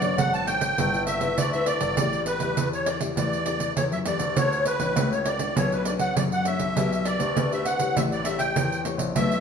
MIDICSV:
0, 0, Header, 1, 5, 480
1, 0, Start_track
1, 0, Tempo, 598205
1, 1584, Time_signature, 4, 2, 24, 8
1, 7543, End_track
2, 0, Start_track
2, 0, Title_t, "Accordion"
2, 0, Program_c, 0, 21
2, 0, Note_on_c, 0, 74, 102
2, 144, Note_on_c, 0, 78, 98
2, 149, Note_off_c, 0, 74, 0
2, 267, Note_off_c, 0, 78, 0
2, 268, Note_on_c, 0, 81, 99
2, 374, Note_on_c, 0, 79, 102
2, 377, Note_off_c, 0, 81, 0
2, 827, Note_off_c, 0, 79, 0
2, 852, Note_on_c, 0, 76, 100
2, 1105, Note_off_c, 0, 76, 0
2, 1105, Note_on_c, 0, 74, 98
2, 1216, Note_off_c, 0, 74, 0
2, 1224, Note_on_c, 0, 76, 90
2, 1332, Note_on_c, 0, 74, 102
2, 1336, Note_off_c, 0, 76, 0
2, 1786, Note_off_c, 0, 74, 0
2, 1816, Note_on_c, 0, 71, 97
2, 2155, Note_off_c, 0, 71, 0
2, 2196, Note_on_c, 0, 73, 83
2, 2297, Note_on_c, 0, 74, 78
2, 2313, Note_off_c, 0, 73, 0
2, 2406, Note_off_c, 0, 74, 0
2, 2540, Note_on_c, 0, 74, 90
2, 2990, Note_off_c, 0, 74, 0
2, 3026, Note_on_c, 0, 73, 88
2, 3080, Note_off_c, 0, 73, 0
2, 3149, Note_on_c, 0, 76, 85
2, 3202, Note_off_c, 0, 76, 0
2, 3260, Note_on_c, 0, 74, 86
2, 3506, Note_on_c, 0, 73, 97
2, 3510, Note_off_c, 0, 74, 0
2, 3729, Note_off_c, 0, 73, 0
2, 3744, Note_on_c, 0, 71, 97
2, 4114, Note_on_c, 0, 73, 80
2, 4115, Note_off_c, 0, 71, 0
2, 4225, Note_on_c, 0, 74, 85
2, 4233, Note_off_c, 0, 73, 0
2, 4472, Note_off_c, 0, 74, 0
2, 4475, Note_on_c, 0, 73, 89
2, 4594, Note_off_c, 0, 73, 0
2, 4598, Note_on_c, 0, 71, 77
2, 4703, Note_off_c, 0, 71, 0
2, 4704, Note_on_c, 0, 74, 85
2, 4759, Note_off_c, 0, 74, 0
2, 4810, Note_on_c, 0, 78, 87
2, 4929, Note_off_c, 0, 78, 0
2, 4952, Note_on_c, 0, 74, 86
2, 5004, Note_off_c, 0, 74, 0
2, 5077, Note_on_c, 0, 78, 90
2, 5183, Note_off_c, 0, 78, 0
2, 5186, Note_on_c, 0, 76, 88
2, 5664, Note_on_c, 0, 74, 92
2, 5680, Note_off_c, 0, 76, 0
2, 6035, Note_off_c, 0, 74, 0
2, 6037, Note_on_c, 0, 76, 80
2, 6140, Note_on_c, 0, 78, 84
2, 6154, Note_off_c, 0, 76, 0
2, 6390, Note_off_c, 0, 78, 0
2, 6391, Note_on_c, 0, 76, 87
2, 6444, Note_off_c, 0, 76, 0
2, 6516, Note_on_c, 0, 74, 80
2, 6617, Note_on_c, 0, 76, 87
2, 6634, Note_off_c, 0, 74, 0
2, 6727, Note_on_c, 0, 79, 90
2, 6745, Note_off_c, 0, 76, 0
2, 7070, Note_off_c, 0, 79, 0
2, 7351, Note_on_c, 0, 76, 110
2, 7543, Note_off_c, 0, 76, 0
2, 7543, End_track
3, 0, Start_track
3, 0, Title_t, "Nylon-string guitar"
3, 0, Program_c, 1, 24
3, 0, Note_on_c, 1, 59, 58
3, 8, Note_on_c, 1, 62, 65
3, 12, Note_on_c, 1, 69, 72
3, 18, Note_on_c, 1, 73, 78
3, 117, Note_off_c, 1, 59, 0
3, 144, Note_on_c, 1, 54, 60
3, 337, Note_off_c, 1, 62, 0
3, 339, Note_off_c, 1, 69, 0
3, 341, Note_off_c, 1, 73, 0
3, 371, Note_on_c, 1, 62, 58
3, 374, Note_on_c, 1, 69, 60
3, 380, Note_on_c, 1, 73, 71
3, 579, Note_off_c, 1, 62, 0
3, 581, Note_off_c, 1, 69, 0
3, 582, Note_off_c, 1, 73, 0
3, 600, Note_off_c, 1, 54, 0
3, 617, Note_on_c, 1, 55, 58
3, 621, Note_on_c, 1, 64, 61
3, 624, Note_on_c, 1, 69, 63
3, 627, Note_on_c, 1, 71, 62
3, 846, Note_off_c, 1, 64, 0
3, 849, Note_off_c, 1, 69, 0
3, 851, Note_off_c, 1, 71, 0
3, 966, Note_on_c, 1, 64, 62
3, 970, Note_on_c, 1, 69, 68
3, 972, Note_on_c, 1, 71, 74
3, 1077, Note_off_c, 1, 55, 0
3, 1103, Note_on_c, 1, 50, 60
3, 1177, Note_off_c, 1, 64, 0
3, 1178, Note_off_c, 1, 69, 0
3, 1180, Note_off_c, 1, 71, 0
3, 1232, Note_on_c, 1, 64, 67
3, 1235, Note_on_c, 1, 69, 62
3, 1240, Note_on_c, 1, 71, 64
3, 1550, Note_off_c, 1, 64, 0
3, 1551, Note_off_c, 1, 69, 0
3, 1553, Note_off_c, 1, 71, 0
3, 1560, Note_off_c, 1, 50, 0
3, 1583, Note_on_c, 1, 57, 62
3, 1587, Note_on_c, 1, 64, 59
3, 1593, Note_on_c, 1, 74, 67
3, 1594, Note_on_c, 1, 67, 58
3, 1810, Note_off_c, 1, 64, 0
3, 1811, Note_off_c, 1, 67, 0
3, 1814, Note_off_c, 1, 74, 0
3, 1934, Note_on_c, 1, 64, 68
3, 1937, Note_on_c, 1, 67, 69
3, 1938, Note_on_c, 1, 74, 67
3, 2041, Note_off_c, 1, 57, 0
3, 2071, Note_on_c, 1, 52, 60
3, 2381, Note_off_c, 1, 64, 0
3, 2382, Note_off_c, 1, 67, 0
3, 2383, Note_off_c, 1, 74, 0
3, 2408, Note_on_c, 1, 64, 64
3, 2412, Note_on_c, 1, 67, 65
3, 2417, Note_on_c, 1, 74, 64
3, 2524, Note_off_c, 1, 52, 0
3, 2543, Note_on_c, 1, 57, 58
3, 2738, Note_off_c, 1, 64, 0
3, 2740, Note_off_c, 1, 67, 0
3, 2742, Note_off_c, 1, 74, 0
3, 2774, Note_on_c, 1, 64, 62
3, 2778, Note_on_c, 1, 67, 61
3, 2780, Note_on_c, 1, 74, 62
3, 3000, Note_off_c, 1, 57, 0
3, 3024, Note_on_c, 1, 52, 57
3, 3088, Note_off_c, 1, 64, 0
3, 3090, Note_off_c, 1, 67, 0
3, 3091, Note_off_c, 1, 74, 0
3, 3258, Note_on_c, 1, 64, 47
3, 3261, Note_on_c, 1, 67, 50
3, 3265, Note_on_c, 1, 74, 64
3, 3402, Note_off_c, 1, 64, 0
3, 3404, Note_off_c, 1, 67, 0
3, 3405, Note_off_c, 1, 74, 0
3, 3480, Note_off_c, 1, 52, 0
3, 3503, Note_on_c, 1, 62, 59
3, 3507, Note_on_c, 1, 69, 58
3, 3508, Note_on_c, 1, 66, 58
3, 3513, Note_on_c, 1, 73, 72
3, 3827, Note_off_c, 1, 66, 0
3, 3828, Note_off_c, 1, 69, 0
3, 3829, Note_off_c, 1, 73, 0
3, 3848, Note_on_c, 1, 66, 62
3, 3851, Note_on_c, 1, 69, 65
3, 3858, Note_on_c, 1, 73, 65
3, 3960, Note_off_c, 1, 62, 0
3, 3988, Note_on_c, 1, 57, 64
3, 4298, Note_off_c, 1, 66, 0
3, 4300, Note_off_c, 1, 69, 0
3, 4302, Note_off_c, 1, 73, 0
3, 4329, Note_on_c, 1, 62, 57
3, 4335, Note_on_c, 1, 69, 55
3, 4335, Note_on_c, 1, 73, 65
3, 4443, Note_off_c, 1, 57, 0
3, 4468, Note_on_c, 1, 59, 62
3, 4539, Note_off_c, 1, 62, 0
3, 4540, Note_off_c, 1, 69, 0
3, 4542, Note_off_c, 1, 73, 0
3, 4592, Note_on_c, 1, 62, 65
3, 4595, Note_on_c, 1, 69, 63
3, 4598, Note_on_c, 1, 73, 65
3, 4670, Note_off_c, 1, 62, 0
3, 4671, Note_off_c, 1, 69, 0
3, 4673, Note_off_c, 1, 73, 0
3, 4697, Note_on_c, 1, 62, 64
3, 4702, Note_on_c, 1, 69, 55
3, 4704, Note_on_c, 1, 73, 73
3, 4923, Note_off_c, 1, 59, 0
3, 4947, Note_on_c, 1, 54, 63
3, 5010, Note_off_c, 1, 62, 0
3, 5012, Note_off_c, 1, 69, 0
3, 5014, Note_off_c, 1, 73, 0
3, 5173, Note_on_c, 1, 62, 57
3, 5177, Note_on_c, 1, 69, 53
3, 5181, Note_on_c, 1, 73, 62
3, 5320, Note_off_c, 1, 62, 0
3, 5322, Note_off_c, 1, 69, 0
3, 5324, Note_off_c, 1, 73, 0
3, 5402, Note_off_c, 1, 54, 0
3, 5423, Note_on_c, 1, 59, 61
3, 5427, Note_on_c, 1, 67, 62
3, 5429, Note_on_c, 1, 66, 57
3, 5431, Note_on_c, 1, 74, 63
3, 5747, Note_off_c, 1, 66, 0
3, 5748, Note_off_c, 1, 67, 0
3, 5749, Note_off_c, 1, 74, 0
3, 5768, Note_on_c, 1, 66, 69
3, 5771, Note_on_c, 1, 67, 65
3, 5776, Note_on_c, 1, 74, 80
3, 5881, Note_off_c, 1, 59, 0
3, 5908, Note_on_c, 1, 59, 67
3, 5978, Note_off_c, 1, 66, 0
3, 5980, Note_off_c, 1, 67, 0
3, 5981, Note_off_c, 1, 74, 0
3, 6031, Note_on_c, 1, 66, 66
3, 6036, Note_on_c, 1, 67, 61
3, 6038, Note_on_c, 1, 74, 64
3, 6230, Note_off_c, 1, 66, 0
3, 6231, Note_off_c, 1, 67, 0
3, 6233, Note_off_c, 1, 74, 0
3, 6254, Note_on_c, 1, 64, 68
3, 6257, Note_on_c, 1, 67, 68
3, 6258, Note_on_c, 1, 73, 73
3, 6362, Note_off_c, 1, 59, 0
3, 6389, Note_on_c, 1, 57, 57
3, 6581, Note_off_c, 1, 64, 0
3, 6582, Note_off_c, 1, 67, 0
3, 6583, Note_off_c, 1, 73, 0
3, 6622, Note_on_c, 1, 64, 61
3, 6628, Note_on_c, 1, 67, 66
3, 6628, Note_on_c, 1, 73, 64
3, 6843, Note_off_c, 1, 57, 0
3, 6869, Note_on_c, 1, 52, 64
3, 7066, Note_off_c, 1, 64, 0
3, 7067, Note_off_c, 1, 67, 0
3, 7068, Note_off_c, 1, 73, 0
3, 7099, Note_on_c, 1, 64, 56
3, 7103, Note_on_c, 1, 67, 60
3, 7106, Note_on_c, 1, 73, 69
3, 7304, Note_off_c, 1, 64, 0
3, 7306, Note_off_c, 1, 67, 0
3, 7307, Note_off_c, 1, 73, 0
3, 7323, Note_off_c, 1, 52, 0
3, 7351, Note_on_c, 1, 47, 65
3, 7352, Note_on_c, 1, 57, 68
3, 7356, Note_on_c, 1, 62, 65
3, 7358, Note_on_c, 1, 66, 72
3, 7543, Note_off_c, 1, 47, 0
3, 7543, Note_off_c, 1, 57, 0
3, 7543, Note_off_c, 1, 62, 0
3, 7543, Note_off_c, 1, 66, 0
3, 7543, End_track
4, 0, Start_track
4, 0, Title_t, "Grand piano"
4, 0, Program_c, 2, 0
4, 3, Note_on_c, 2, 42, 85
4, 113, Note_off_c, 2, 42, 0
4, 142, Note_on_c, 2, 32, 91
4, 551, Note_off_c, 2, 32, 0
4, 626, Note_on_c, 2, 31, 106
4, 1033, Note_off_c, 2, 31, 0
4, 1102, Note_on_c, 2, 38, 90
4, 1409, Note_off_c, 2, 38, 0
4, 1448, Note_on_c, 2, 31, 91
4, 1557, Note_off_c, 2, 31, 0
4, 1578, Note_on_c, 2, 33, 93
4, 1887, Note_off_c, 2, 33, 0
4, 1920, Note_on_c, 2, 40, 84
4, 2032, Note_off_c, 2, 40, 0
4, 2054, Note_on_c, 2, 40, 97
4, 2467, Note_off_c, 2, 40, 0
4, 2532, Note_on_c, 2, 40, 93
4, 2946, Note_off_c, 2, 40, 0
4, 3020, Note_on_c, 2, 40, 91
4, 3124, Note_off_c, 2, 40, 0
4, 3142, Note_on_c, 2, 42, 78
4, 3251, Note_off_c, 2, 42, 0
4, 3252, Note_on_c, 2, 40, 82
4, 3364, Note_on_c, 2, 38, 80
4, 3366, Note_off_c, 2, 40, 0
4, 3481, Note_off_c, 2, 38, 0
4, 3500, Note_on_c, 2, 38, 98
4, 3808, Note_off_c, 2, 38, 0
4, 3843, Note_on_c, 2, 33, 87
4, 3955, Note_off_c, 2, 33, 0
4, 3979, Note_on_c, 2, 37, 91
4, 4389, Note_off_c, 2, 37, 0
4, 4461, Note_on_c, 2, 35, 98
4, 4871, Note_off_c, 2, 35, 0
4, 4943, Note_on_c, 2, 42, 94
4, 5250, Note_off_c, 2, 42, 0
4, 5288, Note_on_c, 2, 35, 85
4, 5397, Note_off_c, 2, 35, 0
4, 5424, Note_on_c, 2, 35, 101
4, 5730, Note_off_c, 2, 35, 0
4, 5768, Note_on_c, 2, 38, 86
4, 5877, Note_off_c, 2, 38, 0
4, 5906, Note_on_c, 2, 38, 91
4, 6313, Note_off_c, 2, 38, 0
4, 6386, Note_on_c, 2, 33, 102
4, 6794, Note_off_c, 2, 33, 0
4, 6864, Note_on_c, 2, 40, 95
4, 7170, Note_off_c, 2, 40, 0
4, 7202, Note_on_c, 2, 34, 91
4, 7314, Note_off_c, 2, 34, 0
4, 7344, Note_on_c, 2, 35, 99
4, 7543, Note_off_c, 2, 35, 0
4, 7543, End_track
5, 0, Start_track
5, 0, Title_t, "Pandeiro"
5, 15, Note_on_c, 9, 54, 58
5, 95, Note_off_c, 9, 54, 0
5, 147, Note_on_c, 9, 54, 82
5, 227, Note_off_c, 9, 54, 0
5, 271, Note_on_c, 9, 54, 35
5, 352, Note_off_c, 9, 54, 0
5, 381, Note_on_c, 9, 54, 68
5, 461, Note_off_c, 9, 54, 0
5, 491, Note_on_c, 9, 54, 66
5, 572, Note_off_c, 9, 54, 0
5, 628, Note_on_c, 9, 54, 79
5, 708, Note_off_c, 9, 54, 0
5, 754, Note_on_c, 9, 54, 33
5, 834, Note_off_c, 9, 54, 0
5, 857, Note_on_c, 9, 54, 65
5, 937, Note_off_c, 9, 54, 0
5, 970, Note_on_c, 9, 54, 58
5, 1050, Note_off_c, 9, 54, 0
5, 1105, Note_on_c, 9, 54, 81
5, 1185, Note_off_c, 9, 54, 0
5, 1230, Note_on_c, 9, 54, 37
5, 1310, Note_off_c, 9, 54, 0
5, 1335, Note_on_c, 9, 54, 70
5, 1415, Note_off_c, 9, 54, 0
5, 1449, Note_on_c, 9, 54, 65
5, 1529, Note_off_c, 9, 54, 0
5, 1581, Note_on_c, 9, 54, 84
5, 1662, Note_off_c, 9, 54, 0
5, 1707, Note_on_c, 9, 54, 34
5, 1787, Note_off_c, 9, 54, 0
5, 1813, Note_on_c, 9, 54, 68
5, 1893, Note_off_c, 9, 54, 0
5, 1926, Note_on_c, 9, 54, 59
5, 2006, Note_off_c, 9, 54, 0
5, 2063, Note_on_c, 9, 54, 84
5, 2143, Note_off_c, 9, 54, 0
5, 2193, Note_on_c, 9, 54, 32
5, 2273, Note_off_c, 9, 54, 0
5, 2298, Note_on_c, 9, 54, 72
5, 2378, Note_off_c, 9, 54, 0
5, 2412, Note_on_c, 9, 54, 64
5, 2492, Note_off_c, 9, 54, 0
5, 2545, Note_on_c, 9, 54, 79
5, 2625, Note_off_c, 9, 54, 0
5, 2672, Note_on_c, 9, 54, 32
5, 2752, Note_off_c, 9, 54, 0
5, 2775, Note_on_c, 9, 54, 70
5, 2855, Note_off_c, 9, 54, 0
5, 2889, Note_on_c, 9, 54, 58
5, 2970, Note_off_c, 9, 54, 0
5, 3023, Note_on_c, 9, 54, 81
5, 3103, Note_off_c, 9, 54, 0
5, 3146, Note_on_c, 9, 54, 36
5, 3226, Note_off_c, 9, 54, 0
5, 3254, Note_on_c, 9, 54, 72
5, 3334, Note_off_c, 9, 54, 0
5, 3365, Note_on_c, 9, 54, 61
5, 3446, Note_off_c, 9, 54, 0
5, 3503, Note_on_c, 9, 54, 83
5, 3583, Note_off_c, 9, 54, 0
5, 3630, Note_on_c, 9, 54, 36
5, 3710, Note_off_c, 9, 54, 0
5, 3735, Note_on_c, 9, 54, 65
5, 3816, Note_off_c, 9, 54, 0
5, 3849, Note_on_c, 9, 54, 56
5, 3929, Note_off_c, 9, 54, 0
5, 3984, Note_on_c, 9, 54, 84
5, 4064, Note_off_c, 9, 54, 0
5, 4112, Note_on_c, 9, 54, 33
5, 4193, Note_off_c, 9, 54, 0
5, 4217, Note_on_c, 9, 54, 70
5, 4297, Note_off_c, 9, 54, 0
5, 4327, Note_on_c, 9, 54, 63
5, 4408, Note_off_c, 9, 54, 0
5, 4466, Note_on_c, 9, 54, 89
5, 4546, Note_off_c, 9, 54, 0
5, 4592, Note_on_c, 9, 54, 33
5, 4672, Note_off_c, 9, 54, 0
5, 4697, Note_on_c, 9, 54, 68
5, 4777, Note_off_c, 9, 54, 0
5, 4809, Note_on_c, 9, 54, 61
5, 4890, Note_off_c, 9, 54, 0
5, 4947, Note_on_c, 9, 54, 88
5, 5028, Note_off_c, 9, 54, 0
5, 5072, Note_on_c, 9, 54, 34
5, 5152, Note_off_c, 9, 54, 0
5, 5178, Note_on_c, 9, 54, 65
5, 5258, Note_off_c, 9, 54, 0
5, 5292, Note_on_c, 9, 54, 62
5, 5373, Note_off_c, 9, 54, 0
5, 5429, Note_on_c, 9, 54, 83
5, 5509, Note_off_c, 9, 54, 0
5, 5557, Note_on_c, 9, 54, 35
5, 5638, Note_off_c, 9, 54, 0
5, 5661, Note_on_c, 9, 54, 68
5, 5741, Note_off_c, 9, 54, 0
5, 5777, Note_on_c, 9, 54, 57
5, 5857, Note_off_c, 9, 54, 0
5, 5910, Note_on_c, 9, 54, 85
5, 5990, Note_off_c, 9, 54, 0
5, 6038, Note_on_c, 9, 54, 36
5, 6118, Note_off_c, 9, 54, 0
5, 6142, Note_on_c, 9, 54, 70
5, 6222, Note_off_c, 9, 54, 0
5, 6254, Note_on_c, 9, 54, 66
5, 6334, Note_off_c, 9, 54, 0
5, 6392, Note_on_c, 9, 54, 82
5, 6473, Note_off_c, 9, 54, 0
5, 6517, Note_on_c, 9, 54, 32
5, 6597, Note_off_c, 9, 54, 0
5, 6619, Note_on_c, 9, 54, 71
5, 6699, Note_off_c, 9, 54, 0
5, 6734, Note_on_c, 9, 54, 58
5, 6814, Note_off_c, 9, 54, 0
5, 6869, Note_on_c, 9, 54, 86
5, 6949, Note_off_c, 9, 54, 0
5, 6999, Note_on_c, 9, 54, 36
5, 7079, Note_off_c, 9, 54, 0
5, 7102, Note_on_c, 9, 54, 70
5, 7182, Note_off_c, 9, 54, 0
5, 7214, Note_on_c, 9, 54, 67
5, 7294, Note_off_c, 9, 54, 0
5, 7348, Note_on_c, 9, 54, 85
5, 7428, Note_off_c, 9, 54, 0
5, 7475, Note_on_c, 9, 54, 38
5, 7543, Note_off_c, 9, 54, 0
5, 7543, End_track
0, 0, End_of_file